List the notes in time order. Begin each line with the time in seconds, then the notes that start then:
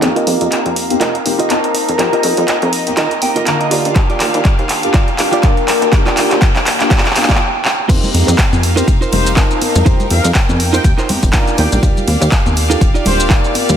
0.02 F2 A#3 C4 D#4 G4 A#4 F5, muted clean electric guitar stroke, clap, closed hi-hat
0.16 F4 A#4 D#5, closed hi-hat
0.27 F2, open hi-hat
0.41 F2, closed hi-hat
0.52 clap, closed hi-hat
0.66 F2, closed hi-hat
0.76 open hi-hat
0.90 A#3 C4 D#4 G4, closed hi-hat
1.00 F1 F4 A#4 D#5, clap, closed hi-hat
1.15 closed hi-hat
1.25 F1 A#3 C4 D#4 G4, muted clean electric guitar stroke, open hi-hat
1.39 F4 A#4 D#5, closed hi-hat
1.50 A#3 C4 D#4 A5, clap, closed hi-hat
1.64 closed hi-hat
1.74 muted clean electric guitar stroke, open hi-hat
1.89 F2, closed hi-hat
1.98 F2 A#3 C4 D#4 G4 D#5, muted clean electric guitar stroke, clap, closed hi-hat
2.13 F4 A#4 D#5, closed hi-hat
2.23 F2, open hi-hat
2.37 F2, closed hi-hat
2.48 clap, closed hi-hat
2.62 F2, closed hi-hat
2.73 open hi-hat
2.87 A#3 C4 D#4 G4, closed hi-hat
2.97 D#2 F4 A#4 D#5, clap, closed hi-hat
3.11 closed hi-hat
3.22 A#3 C4 D#4 G4 G5, muted clean electric guitar stroke, open hi-hat
3.36 F1 F4 A#4 D#5, closed hi-hat
3.47 D3 A#3 F4 A#4 F5, clap, closed hi-hat
3.61 D#5, closed hi-hat
3.71 D#2 D4 F4 G4 D5 F5, open hi-hat
3.85 A#1, closed hi-hat
3.95 D#2 A#3 G4, kick, clap, closed hi-hat
4.09 F4 G4 D5, closed hi-hat
4.20 D#2, clap, open hi-hat
4.34 D#2, closed hi-hat
4.45 kick, clap, closed hi-hat
4.59 D#2, closed hi-hat
4.69 clap, open hi-hat
4.83 A#3 D4 F4 G4, closed hi-hat
4.94 D#1 F4 G4 D5, kick, clap, closed hi-hat
5.08 closed hi-hat
5.18 D#1 A#3 D4 F4 G4, muted clean electric guitar stroke, clap, open hi-hat
5.32 F4 G4 D5, closed hi-hat
5.43 A#3 D4 F4 A#4, kick, clap, closed hi-hat
5.57 closed hi-hat
5.68 G5, muted clean electric guitar stroke, clap, open hi-hat
5.82 D#2, closed hi-hat
5.92 A#3 D4 F4 G4, muted clean electric guitar stroke, kick, clap, closed hi-hat
6.06 F4 G4 D5, clap, closed hi-hat
6.17 D#2, clap, open hi-hat
6.31 D#2, clap, closed hi-hat
6.42 kick, clap, closed hi-hat
6.55 D#2, clap, closed hi-hat
6.67 clap, open hi-hat
6.80 A#3 D4 F4 G4, clap, closed hi-hat
6.90 A#1 F4 G4 D5, kick, clap, closed hi-hat
6.98 clap
7.06 clap, closed hi-hat
7.10 clap
7.15 A#3 D4 F4 G4, muted clean electric guitar stroke, clap, open hi-hat
7.23 clap
7.29 D#1 F4 G4 D5, kick, clap, closed hi-hat
7.35 clap
7.40 G5
7.65 clap
7.88 F2 A#3 C4 D#4 F4 G4 A#4 C5 F5, kick, closed hi-hat, crash, ride, shaker
8.04 closed hi-hat, low conga, shaker
8.14 F2, open hi-hat, ride, high conga, shaker
8.27 F2, muted clean electric guitar stroke, closed hi-hat, shaker
8.38 muted clean electric guitar stroke, kick, clap, closed hi-hat, ride, shaker
8.53 F2, closed hi-hat, high conga, shaker
8.63 open hi-hat, ride, shaker
8.76 A#3 C4 D#4 F4 G4 A#4 C5, closed hi-hat, shaker
8.88 F1, kick, closed hi-hat, ride, shaker
9.01 D#4 F4 A#4 C5, closed hi-hat, shaker
9.12 F1 A#3 C4 D#4 G4 C5, open hi-hat, ride, low conga, shaker
9.25 muted clean electric guitar stroke, closed hi-hat, shaker
9.36 A#3 C4 D#4 F4 A#4 C5 A5, kick, clap, closed hi-hat, ride, shaker
9.51 closed hi-hat, shaker
9.62 open hi-hat, ride, high conga, shaker
9.75 F2, closed hi-hat, low conga, shaker
9.85 F2 A#3 C4 D#4 F4 G4 A#4 C5 G5, kick, closed hi-hat, ride, shaker
10.00 closed hi-hat, low conga, shaker
10.10 F2 F5, open hi-hat, ride, high conga, shaker
10.24 F2, muted clean electric guitar stroke, closed hi-hat, shaker
10.35 muted clean electric guitar stroke, kick, clap, closed hi-hat, ride, shaker
10.49 F2, closed hi-hat, high conga, shaker
10.60 open hi-hat, ride, shaker
10.73 A#3 C4 D#4 F4 G4 A#4 C5 G5, closed hi-hat, shaker
10.84 D#2, kick, closed hi-hat, ride, shaker
10.98 D#4 F4 A#4 C5, clap, closed hi-hat, shaker
11.09 A#3 C4 D#4 G4, open hi-hat, ride, high conga, low conga, shaker
11.22 F1, muted clean electric guitar stroke, kick, closed hi-hat, shaker
11.33 A#3 D4 D#4 F4 A#4 D5, kick, clap, closed hi-hat, ride, shaker
11.47 closed hi-hat, shaker
11.58 D#2 D#4 F4 G4 D5 F5 G5, open hi-hat, ride, high conga, shaker
11.72 A#1 G5, closed hi-hat, low conga, shaker
11.82 D#2 A#3 F4 G4 D5, kick, closed hi-hat, ride, shaker
11.97 closed hi-hat, low conga, shaker
12.08 D#2, open hi-hat, ride, high conga, shaker
12.20 D#2, muted clean electric guitar stroke, closed hi-hat, shaker
12.31 muted clean electric guitar stroke, kick, clap, closed hi-hat, ride, shaker
12.46 D#2, closed hi-hat, high conga, shaker
12.56 open hi-hat, ride, shaker
12.70 A#3 D4 D#4 F4 G4 A4, closed hi-hat, shaker
12.81 D#1, kick, closed hi-hat, ride, shaker
12.94 D#4 F4 G4 D5, closed hi-hat, shaker
13.05 D#1 A#3 D4 F4 G4 C5, open hi-hat, ride, low conga, shaker
13.19 muted clean electric guitar stroke, closed hi-hat, shaker
13.30 A#3 D#4 F4 G4 D5, kick, clap, closed hi-hat, ride, shaker
13.44 closed hi-hat, shaker
13.55 open hi-hat, ride, high conga, shaker
13.69 D#2, closed hi-hat, low conga, shaker